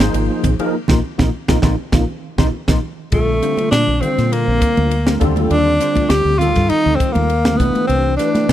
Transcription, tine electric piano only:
0.00 F3 A#3 D#4 G#4 C5
0.59 F3 A#3 D#4 G#4 A#4
0.89 A#3 D#4 F4
1.18 A#3 D#4 F4
1.49 A#3 D#4 F4
1.63 A#3 D#4 F4
1.93 A#3 D#4 F4
2.38 A#3 D#4 F4
2.68 A#3 D#4 F4
3.12 D3 G3 C4 F4 A4
3.42 D3 G3 C4 F4 C5
4.01 D3 G3 C4 F4 C5
5.06 D3 G3 C4 F4 A#4
5.20 D3 G3 C4 F4 A4
5.80 D3 G3 C4 F4 C5
6.41 D#3 G3 C4 F4 A4
7.45 D3 G3 C4 F4 A#4
7.60 E3 A3 D4 G4 B4
8.19 E3 A3 D4 G4 B4

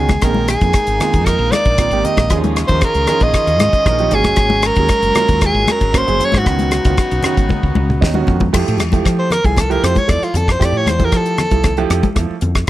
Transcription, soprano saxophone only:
Already playing: G#4
0.24 A#4
0.50 G#4
1.26 A#4
1.52 D5
2.05 D#5
2.68 C5
2.85 A#4
3.23 D#5
4.15 G#4
4.67 A#4
5.46 G#4
5.72 A#4
5.98 C5
6.25 C#5
6.38 F#4
9.19 C5
9.32 A#4
9.46 G#4
9.61 A4
9.72 A#4
9.84 C5
9.99 C#5
10.10 D5
10.24 F4
10.37 A4
10.52 C5
10.65 D5
10.77 C#5
10.90 C5
11.05 A#4
11.18 A4

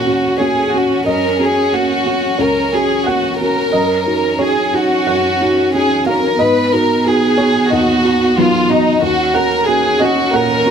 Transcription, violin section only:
Already playing: F#4
0.39 G#4
0.73 F#4
1.07 A#4
1.40 G#4
1.74 F#4
2.42 A#4
2.74 G#4
3.07 F#4
3.40 A#4
4.42 G#4
4.74 F#4
5.75 G#4
6.06 A#4
6.40 B4
6.73 A#4
7.05 G#4
7.71 F#4
8.38 F4
8.71 D#4
9.04 F#4
9.35 A#4
9.67 G#4
10.01 F#4
10.34 A#4

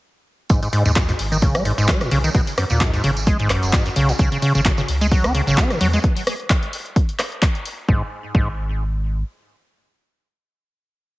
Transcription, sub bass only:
0.50 G#1
0.86 D#2
1.19 G#1
1.78 D#1
2.11 B1
2.35 G#1
2.70 D#2
3.04 G#1
3.63 D#1
3.96 B1
4.19 C#2
4.55 G#1
4.88 C#2
5.47 G#1
5.81 E2
7.88 G#1
8.35 G#1

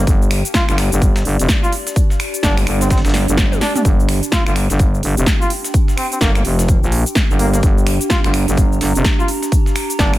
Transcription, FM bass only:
0.07 G1
0.69 G1
0.92 G1
1.25 G1
1.39 F1
2.43 G1
2.67 G1
3.05 G1
3.28 G1
3.85 G1
4.46 G1
4.70 G1
5.03 G1
5.17 F1
6.21 G1
6.45 F1
6.83 A#1
7.30 G1
7.63 G1
8.24 G1
8.48 G1
8.81 G1
8.95 F1
9.99 G1

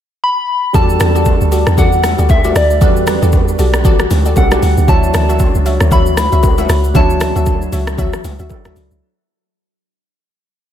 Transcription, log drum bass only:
0.74 E2
1.00 E2
1.41 D2
1.67 E2
1.78 E2
2.19 D2
2.55 D2
2.81 E2
3.22 E2
3.59 B1
4.11 D2
4.37 B1
4.62 D2
4.77 D2
4.88 D2
5.14 D2
5.55 C#2
5.81 D2
5.92 D2
6.32 C#2
6.69 C#2
6.95 D2
7.36 D2
7.72 C#2
7.98 D2
8.24 C#2
8.39 D2
8.65 D2
8.76 C#2
8.91 C#2

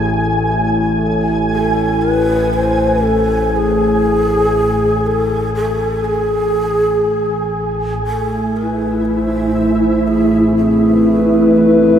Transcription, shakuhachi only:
1.53 A4
2.02 B4
2.53 C5
3.04 A4
3.56 G#4
5.06 A4
5.55 A4
6.05 G#4
8.07 A4
8.56 B4
9.05 B4
9.19 C5
10.07 G#4
10.56 G#4
11.56 A4

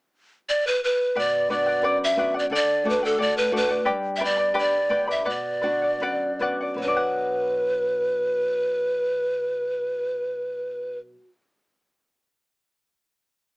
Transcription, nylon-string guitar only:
1.16 B2
1.50 B3 D4 F#4
1.82 F#2
2.16 B3 D4 F#4
2.50 D3
2.84 A3 D4 F#4
3.18 A2
3.51 A3 D4 F#4
3.87 G2
4.20 B3 D4 G4
4.54 D3
4.89 B3 D4 G4
5.26 B2
5.63 B3 D4 F#4
6.00 F#2
6.39 B3 D4 F#4
6.74 B2 F#3
6.80 B3 D4
6.87 F#4

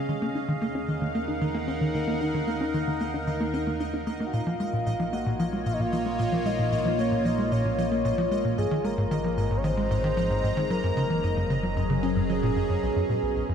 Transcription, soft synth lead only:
4.26 F#5
4.33 F5
5.13 F#5
5.40 F5
5.66 F5
5.73 D#5
5.80 F5
6.46 D#5
6.99 C#5
7.25 D#5
7.52 C#5
8.58 G#4
8.85 A#4
9.57 C#5
9.64 C5
10.70 A#4
12.83 B4

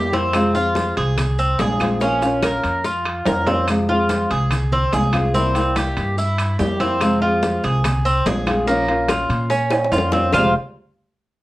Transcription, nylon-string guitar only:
Already playing: G3 A#3 E4 G4
0.13 G3 A#3 E4 G4
0.34 C3 F3 G#3 C4 F4
0.55 F3 G#3 C4 F4
1.17 muted nylon-string guitar stroke
1.59 F3 G#3 C4 F4
1.80 F3 G#3 C4 F4
2.01 F3 A#3 C#4 F4
2.22 A#3 C#4 F4
2.84 muted nylon-string guitar stroke
3.26 F3 A#3 C#4 F4
3.47 A#3 C#4 F4
3.68 C3 F3 G#3 C4 F4
3.89 F3 G#3 C4 F4
4.51 muted nylon-string guitar stroke
4.93 F3 G#3 C4 F4
5.13 F3 G#3 C4 F4
5.35 C3 G3 A#3 E4 G4
5.55 G3 A#3 E4 G4
6.18 muted nylon-string guitar stroke
6.59 G3 A#3 E4 G4
6.80 G3 A#3 E4 G4
7.00 C3 F3 G#3 C4 F4
7.22 F3 G#3 C4 F4
7.84 muted nylon-string guitar stroke
8.26 F3 G#3 C4 F4
8.47 F3 G#3 C4 F4
8.67 F3 A#3 C#4 F4
8.89 A#3 C#4 F4
9.51 muted nylon-string guitar stroke
9.92 F3 A#3 C#4 F4
10.13 A#3 C#4 F4
10.34 F2 C3 F3 G#3 C4 F4

